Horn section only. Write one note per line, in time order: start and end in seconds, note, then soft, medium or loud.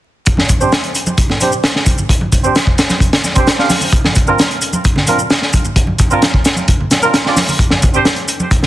0.61 0.72 C4 medium
0.61 0.72 D4 medium
0.61 0.72 G4 medium
0.61 0.72 C5 loud
1.41 1.52 C4 medium
1.41 1.52 D4 medium
1.41 1.52 G4 medium
1.41 1.52 C5 medium
2.44 2.55 C4 medium
2.44 2.55 D4 medium
2.44 2.55 G4 medium
2.44 2.55 C5 loud
3.36 3.46 C4 medium
3.36 3.47 D4 medium
3.36 3.46 G4 medium
3.36 3.46 C5 loud
3.59 3.69 C4 medium
3.59 3.69 D4 medium
3.59 3.69 G4 medium
3.59 3.69 F5 medium
4.27 4.38 C4 medium
4.27 4.38 D4 medium
4.27 4.38 F4 medium
4.27 4.38 A#4 loud
5.08 5.18 C4 medium
5.08 5.18 D4 medium
5.08 5.18 F4 medium
5.08 5.19 A#4 medium
6.11 6.21 C4 medium
6.11 6.21 D4 medium
6.11 6.22 F4 medium
6.11 6.22 A#4 loud
7.02 7.13 C4 medium
7.02 7.13 D4 medium
7.02 7.13 F4 medium
7.02 7.13 A#4 loud
7.25 7.36 C4 medium
7.25 7.36 D4 medium
7.25 7.36 F4 medium
7.25 7.36 D5 medium
7.94 8.05 C4 medium
7.94 8.05 D4 medium
7.94 8.05 G4 medium
7.94 8.05 C5 loud